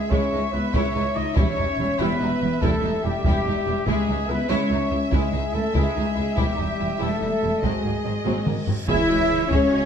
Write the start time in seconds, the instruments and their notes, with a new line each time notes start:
Already playing: french horn section G#3, trumpet section G#4, violin section E5
0.10 double bass section C#2, cello section C#2, viola section G#3, french horn section C#4, violin section E4, trumpet section C#5, taiko
0.30 double bass section C#2, cello section C#2, viola section G#3, violin section D#4
0.52 double bass section C#2, cello section C#2, viola section G#3, french horn section B3, violin section E4, trumpet section B4
0.73 double bass section C#2, cello section C#2, viola section G#3, french horn section C#4, violin section E4, trumpet section C#5, taiko
0.94 double bass section C#2, cello section C#2, viola section G#3, violin section D#4
1.15 double bass section C#2, cello section C#2, viola section G#3, french horn section D#4, violin section E4, trumpet section D#5
1.35 double bass section E1, cello section E2, viola section G3, french horn section C#4, violin section E4, trumpet section C#5, taiko
1.56 double bass section E1, cello section E2, viola section G3, violin section D#4
1.78 double bass section E1, cello section E2, viola section G3, violin section E4
1.98 double bass section E1, cello section E2, viola section G3, french horn section B3, violin section E4, trumpet section B4
2.20 double bass section E1, cello section E2, viola section G3, violin section D#4
2.41 double bass section E1, cello section E2, viola section G3, violin section E4
2.61 double bass section E1, cello section E2, viola section G3, french horn section A3, violin section E4, trumpet section A4, taiko
2.83 double bass section E1, cello section E2, viola section G3, violin section D#4
3.03 double bass section E1, cello section E2, french horn section G3, viola section G3, violin section E4, trumpet section G4
3.24 double bass section E1, cello section E2, french horn section G3, viola section G3, violin section E4, trumpet section G4, taiko
3.46 double bass section E1, cello section E2, viola section G3, violin section D#4
3.66 double bass section E1, cello section E2, viola section G3, violin section E4
3.85 cello section C#2, double bass section C#2, french horn section G#3, viola section G#3, violin section E4 E5, trumpet section G#4, taiko
4.08 cello section C#2, double bass section C#2, viola section G#3, violin section D#4
4.27 cello section C#2, double bass section C#2, viola section G#3, french horn section B3, violin section E4, trumpet section B4
4.48 cello section C#2, double bass section C#2, viola section G#3, french horn section C#4, violin section E4, trumpet section C#5
4.70 cello section C#2, double bass section C#2, viola section G#3, violin section D#4
4.90 cello section C#2, double bass section C#2, viola section G#3, violin section E4
5.11 cello section C#2, double bass section C#2, french horn section G#3, viola section G#3, violin section E4, trumpet section G#4, taiko
5.32 cello section C#2, double bass section C#2, viola section G#3, violin section D#4
5.53 cello section C#2, double bass section C#2, viola section G#3, french horn section A3, violin section E4, trumpet section A4
5.74 double bass section C#2, cello section C#2, french horn section G#3, viola section G#3, violin section E4, trumpet section G#4, taiko
5.95 double bass section C#2, cello section C#2, viola section G#3, violin section D#4
6.15 double bass section C#2, cello section C#2, viola section G#3, violin section E4
6.37 double bass section E1, cello section E2, french horn section G3, viola section G3, violin section E4, trumpet section G4, taiko, reverse cymbal
6.57 double bass section E1, cello section E2, viola section G3, violin section D#4
6.79 double bass section E1, cello section E2, viola section G3, violin section E4
6.99 double bass section E1, cello section E2, viola section G3, french horn section A3, violin section E4, trumpet section A4
7.20 double bass section E1, cello section E2, viola section G3, violin section D#4
7.42 double bass section E1, cello section E2, viola section G3, violin section E4
7.62 double bass section G#1, cello section G#2, viola section F#3, french horn section G#3, violin section C4 D#5, trumpet section G#4, taiko
7.83 double bass section G#1, cello section G#2, viola section F#3, violin section A#3
8.04 double bass section G#1, cello section G#2, viola section F#3, violin section C4
8.25 double bass section G#1, cello section G#2, viola section F#3, violin section C4, taiko high
8.46 double bass section G#1, cello section G#2, viola section F#3, violin section A#3, taiko mid
8.67 double bass section G#1, cello section G#2, viola section F#3, violin section C4, taiko low
8.87 double bass section C#2, trombone section E3, french horn section E4, string section E4 G#4 C#5 E5, cello section E4, viola section G#4 E5, violin section E5, trumpet section E5, taiko, impact
9.08 double bass section C#2, viola section F#4 D#5
9.29 double bass section C#2, viola section G#4 E5
9.50 double bass section C#2, trombone section C#3, cello section C#4, french horn section C#4, viola section G#4 E5, violin section C#5, trumpet section C#5, taiko
9.71 double bass section C#2, viola section F#4 D#5